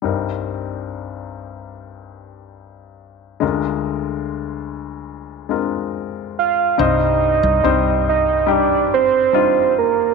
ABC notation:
X:1
M:4/4
L:1/16
Q:1/4=71
K:Cm
V:1 name="Soft synth lead"
z16 | z12 z2 f2 | e6 e2 d2 c4 B2 |]
V:2 name="Grand piano"
[G,CEB]16 | [A,_D=DFB]8- [A,_D=DFB]2 [A,CDFB]6 | [G,CEc]4 [G,CEc]4 [G,DEG]4 [G,DEF]4 |]
V:3 name="Grand piano" clef=bass
[C,,G,,]16 | [D,,D,]16 | G,,6 z8 z2 |]
V:4 name="Fretless electric bass" clef=bass
z16 | z16 | C,,3 C,, C,,6 G,,,6 |]